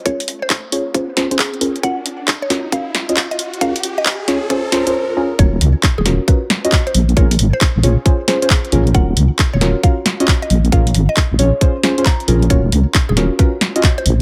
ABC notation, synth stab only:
X:1
M:4/4
L:1/16
Q:"Swing 16ths" 1/4=135
K:Ebm
V:1 name="Synth stab"
[DFAB] z4 z [DFAd] z [DFA=c] z [DFAc] [DFAc] z2 [DFAB] z | [DFGB] z4 z [DFGB] z [DFGB] z2 [DFGe] z4 | [DFAB] z4 z [DFAd] z [DFA=c] z [DFAc] [DFAc] z2 [DFAB] z | [DFGB] z4 z [DFGB] z [DFGB] z2 [DFGe] z4 |
[DFAB] z4 z [DFAd] z [DFA=c] z [DFAc] [DFAc] z2 [DFAB] z | [DFGB] z4 z [DFGB] z [DFGB] z2 [DFGe] z4 | [DFAB] z4 z [DFAd] z [DFA=c] z [DFAc] [DFAc] z2 [DFAB] z | [DFGB] z4 z [DFGB] z [DFGB] z2 [DFGe] z4 |]